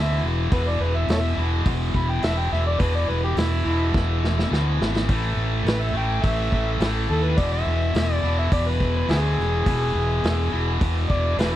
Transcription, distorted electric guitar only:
Already playing: E2 B2 E3
0.51 E2 B2 E3
1.37 E2 B2 E3
2.22 E2 B2 E3
2.79 E2 B2 E3
3.65 E2 B2 E3
4.51 E2 B2 E3
5.08 A2 E3 A3
5.94 A2 E3 A3
6.79 A2 E3 A3
7.36 E2 B2 E3
8.22 E2 B2 E3
9.08 E2 B2 E3
9.65 E2 B2 E3
10.51 E2 B2 E3
11.37 E2 B2 E3

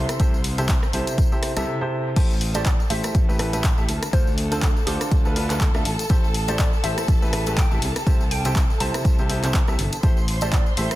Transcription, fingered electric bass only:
0.20 C2
0.93 C2
1.57 C2
2.16 A1
2.90 A1
3.15 A1
3.78 A1
3.89 D2
4.13 D2
4.87 D2
5.12 D2
5.75 D2
5.85 A1
6.10 A1
6.84 A1
7.08 A1
7.71 A1
7.82 C2
8.07 C2
8.80 C2
9.05 C2
9.68 C2
9.79 G1
10.03 A1
10.77 A1

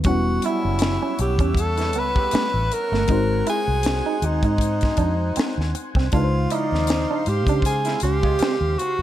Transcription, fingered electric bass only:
0.05 E1
0.65 F#1
1.19 B1
1.39 E2
1.95 C#2
2.33 muted fingered electric bass stroke
2.54 A1
2.92 G1
3.09 G#1
3.68 C2
4.22 D#2
4.43 G#2
4.98 F2
5.37 muted fingered electric bass stroke
5.58 D#2
5.95 C2
6.13 C#2
6.72 D#2
7.27 G#2
7.47 C#3
8.03 C#2
8.61 D#2
8.99 F1

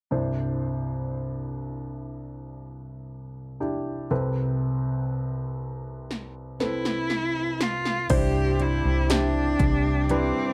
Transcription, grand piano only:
0.11 C2 G2 D4 E4 C5
3.60 D4 E4 G4
4.11 C2 C3 C4 A4 B4
6.60 C4 A4 B4
8.10 G2 D4 E4 C5
9.10 D4 E4 G4
10.11 D4 E4 B4

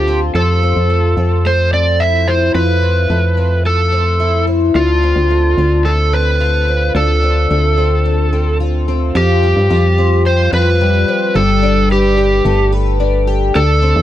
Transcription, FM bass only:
Already playing: D2
0.35 F2
0.76 F2
1.17 F2
2.55 F2
3.10 F2
4.75 D2
5.16 D2
5.58 D2
6.95 D2
7.51 D2
9.15 F2
9.56 G2
9.71 F2
10.53 F2
11.35 G1
12.45 G1
13.55 D2
13.96 E2

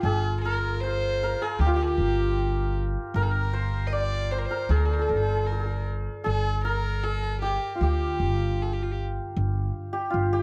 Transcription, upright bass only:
0.03 G1
1.59 D2
1.97 G1
3.14 G1
4.69 D2
5.09 G1
6.26 G1
7.81 D2
8.20 G1
9.37 G1
10.14 G1

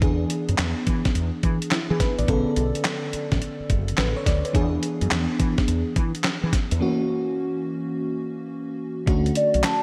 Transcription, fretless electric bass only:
0.02 E2
0.49 F#2
0.59 E2
0.87 E3
1.15 E2
1.44 E3
1.90 E3
2.18 A1
2.28 B1
2.57 B1
3.13 muted fretless electric bass stroke
3.32 A1
3.60 muted fretless electric bass stroke
3.70 F#1
3.98 A1
4.26 D2
4.55 E2
5.02 F#2
5.11 E2
5.40 E3
5.68 E2
5.96 E3
6.43 E3
6.72 E2
9.08 D2
9.54 B1

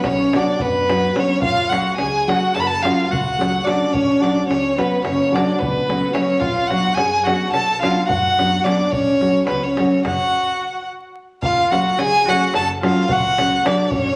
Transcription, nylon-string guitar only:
0.33 F#3 B3 D4 F#4
0.90 F#3 B3 D4 F#4
1.15 F#3 B3 D4 F#4
1.70 F#3 A3 C#4 F#4
2.27 F#3 A3 C#4 F#4
2.83 F#3 A3 C#4 F#4
3.38 F#3 A3 C#4 F#4
3.64 F#3 A3 C#4 F#4
4.20 F#3 A3 C#4 F#4
4.77 F#3 A3 C#4 F#4
5.31 F#3 A3 C#4 F#4
5.88 F#3 A3 C#4 F#4
6.14 F#3 A3 C#4 F#4
6.70 F#3 B3 D4 F#4
7.27 F#3 B3 D4 F#4
7.82 F#3 B3 D4 F#4
8.38 F#3 B3 D4 F#4
8.64 F#3 B3 D4 F#4
9.20 F#3 A3 C#4 F#4
9.78 F#3 A3 C#4 F#4
11.70 F#3 A3 C#4 F#4
12.26 F#3 A3 C#4 F#4
12.82 F#3 A3 C#4 F#4
13.39 F#3 A3 C#4 F#4
13.65 F#3 A3 C#4 F#4

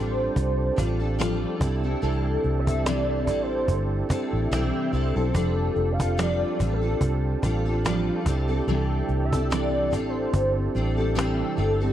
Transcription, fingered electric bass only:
Already playing: A1
0.36 C2
0.78 A1
1.61 C2
2.03 C2
2.44 C2
3.27 A1
3.68 G1
4.10 muted fingered electric bass stroke
4.33 A1
4.51 B1
4.93 C2
5.16 B1
5.35 F1
5.76 F1
6.60 A1
7.01 C2
7.43 A1
8.26 C2
8.67 C2
9.09 C2
9.93 A1
10.34 G1
10.75 A1
11.58 G1

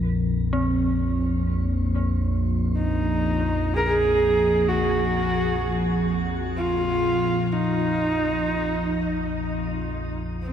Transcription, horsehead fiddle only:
2.76 D#4
3.74 G#4 A#4
3.88 G#4
4.68 F#4
6.57 F4
7.52 D#4
10.43 C4

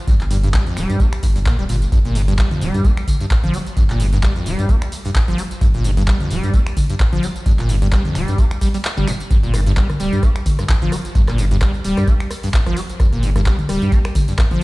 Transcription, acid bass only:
0.08 G2
0.31 G2
0.44 G2
0.54 G3
0.67 F2
0.77 G3
1.00 A#3
1.23 G2
1.36 G2
1.46 A#2
1.59 G3
1.69 A#2
1.92 G2
2.05 A#2
2.15 G2
2.28 G2
2.38 G3
2.51 F2
2.61 G3
2.85 A#3
3.20 G2
3.43 F3
3.54 G3
3.77 G2
3.90 A#2
4.00 G2
4.13 G2
4.23 G3
4.36 F2
4.46 G3
4.69 A#3
5.05 G2
5.28 F3
5.38 G3
5.61 G2
5.74 A#2
5.84 G2
5.97 G2
6.08 G3
6.20 F2
6.31 G3
6.54 A#3
6.90 G2
7.13 F3
7.23 G3
7.46 G2
7.59 A#2
7.69 G2
7.82 G2
7.92 G3
8.05 F2
8.15 G3
8.38 A#3
8.61 G3
8.74 G3
8.97 G3
9.07 F2
9.31 G2
9.43 A#2
9.54 G2
9.66 G2
9.77 G3
10.00 G3
10.23 A#3
10.59 G2
10.69 F2
10.82 F3
10.92 G3
11.15 G2
11.28 A#2
11.38 G2
11.51 G2
11.61 G3
11.84 G3
12.07 A#3
12.43 G2
12.54 F2
12.66 F3
12.77 G3
13.00 G2
13.13 A#2
13.23 G2
13.36 G2
13.46 G3
13.69 G3
13.92 A#3
14.28 G2
14.38 F2
14.51 F3

